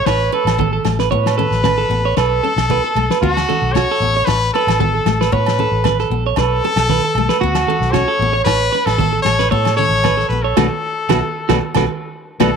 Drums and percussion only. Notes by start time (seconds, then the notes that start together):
0.06 kick, snare, low agogo
0.34 muted conga
0.47 snare, low agogo
0.59 kick, high conga
0.85 snare, low agogo
0.99 snare
1.12 kick, muted conga
1.26 snare, low agogo
1.39 high conga
1.52 snare
1.64 kick, snare, high conga, low agogo
1.94 muted conga
2.17 kick, snare, muted conga, low agogo
2.44 muted conga
2.58 snare, low agogo
2.70 kick, high conga
2.97 low agogo
3.11 snare
3.23 kick
3.37 snare, low agogo
3.50 high conga
3.75 kick, snare, high conga, low agogo
4.05 muted conga, low conga
4.28 kick, snare, muted conga, low agogo
4.56 muted conga
4.68 snare, low agogo
4.81 kick, high conga
5.06 snare, low agogo
5.21 snare
5.33 kick, muted conga
5.46 snare, low agogo
5.59 high conga
5.84 kick, snare, high conga, low agogo
5.99 snare
6.12 muted conga
6.36 kick, snare, low agogo
6.64 muted conga
6.77 snare, low agogo
6.89 kick, high conga
7.15 low agogo
7.29 snare
7.41 kick, muted conga
7.55 snare, low agogo
7.67 high conga
7.82 snare
7.94 kick, snare, high conga, low agogo
8.19 muted conga, low conga
8.46 kick, snare, muted conga, low agogo
8.73 muted conga
8.87 snare, low agogo
8.99 kick, high conga
9.25 snare, low agogo
9.39 snare
9.52 kick, muted conga
9.65 snare, low agogo
9.79 high conga
10.04 kick, snare, high conga, low agogo
10.20 snare
10.32 muted conga
10.57 kick, snare, high conga, low agogo
11.09 kick, snare, high conga, low agogo
11.49 kick, snare, high conga, low agogo
11.75 kick, snare, high conga, low agogo
12.40 kick, snare, high conga, low agogo